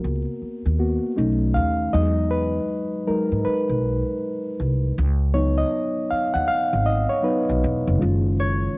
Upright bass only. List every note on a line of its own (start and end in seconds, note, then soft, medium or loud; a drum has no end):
0.04 0.23 C#2 medium
0.42 muted upright bass stroke soft
0.66 0.97 D#2 medium
1.18 1.58 B1 medium
1.56 1.88 D#2 medium
1.94 2.58 E2 loud
3.09 muted upright bass stroke soft
3.32 3.43 G#2 medium
3.46 muted upright bass stroke soft
3.69 4.01 B1 medium
4.60 4.91 C2 medium
4.98 5.62 C#2 loud
6.12 muted upright bass stroke soft
6.35 6.46 D#2 medium
6.49 muted upright bass stroke soft
6.73 7.04 G#1 medium
7.49 7.61 B1 medium
7.64 7.83 E1 medium
7.87 7.99 F1 loud
8.02 8.65 F#1 medium